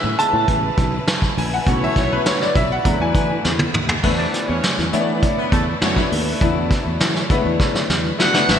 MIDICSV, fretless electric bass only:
0, 0, Header, 1, 2, 480
1, 0, Start_track
1, 0, Tempo, 592885
1, 1352, Time_signature, 4, 2, 24, 8
1, 6955, End_track
2, 0, Start_track
2, 0, Title_t, "Fretless electric bass"
2, 0, Program_c, 0, 35
2, 30, Note_on_c, 0, 45, 95
2, 113, Note_off_c, 0, 45, 0
2, 267, Note_on_c, 0, 45, 90
2, 351, Note_off_c, 0, 45, 0
2, 390, Note_on_c, 0, 33, 97
2, 556, Note_off_c, 0, 33, 0
2, 630, Note_on_c, 0, 35, 88
2, 796, Note_off_c, 0, 35, 0
2, 1112, Note_on_c, 0, 34, 97
2, 1277, Note_off_c, 0, 34, 0
2, 1349, Note_on_c, 0, 35, 113
2, 1515, Note_off_c, 0, 35, 0
2, 1590, Note_on_c, 0, 35, 97
2, 1756, Note_off_c, 0, 35, 0
2, 2067, Note_on_c, 0, 35, 101
2, 2234, Note_off_c, 0, 35, 0
2, 2307, Note_on_c, 0, 40, 99
2, 2392, Note_off_c, 0, 40, 0
2, 2425, Note_on_c, 0, 40, 97
2, 2510, Note_off_c, 0, 40, 0
2, 2548, Note_on_c, 0, 52, 91
2, 2715, Note_off_c, 0, 52, 0
2, 2791, Note_on_c, 0, 40, 85
2, 2957, Note_off_c, 0, 40, 0
2, 3029, Note_on_c, 0, 39, 96
2, 3196, Note_off_c, 0, 39, 0
2, 3269, Note_on_c, 0, 40, 97
2, 3436, Note_off_c, 0, 40, 0
2, 3636, Note_on_c, 0, 40, 94
2, 3718, Note_off_c, 0, 40, 0
2, 3872, Note_on_c, 0, 40, 97
2, 3955, Note_off_c, 0, 40, 0
2, 3993, Note_on_c, 0, 52, 105
2, 4241, Note_off_c, 0, 52, 0
2, 4470, Note_on_c, 0, 40, 91
2, 4636, Note_off_c, 0, 40, 0
2, 4713, Note_on_c, 0, 42, 97
2, 4878, Note_off_c, 0, 42, 0
2, 4954, Note_on_c, 0, 39, 97
2, 5119, Note_off_c, 0, 39, 0
2, 5191, Note_on_c, 0, 40, 98
2, 5439, Note_off_c, 0, 40, 0
2, 5556, Note_on_c, 0, 40, 90
2, 5638, Note_off_c, 0, 40, 0
2, 5675, Note_on_c, 0, 52, 104
2, 5839, Note_off_c, 0, 52, 0
2, 6036, Note_on_c, 0, 40, 95
2, 6117, Note_off_c, 0, 40, 0
2, 6392, Note_on_c, 0, 40, 94
2, 6557, Note_off_c, 0, 40, 0
2, 6871, Note_on_c, 0, 32, 87
2, 6955, Note_off_c, 0, 32, 0
2, 6955, End_track
0, 0, End_of_file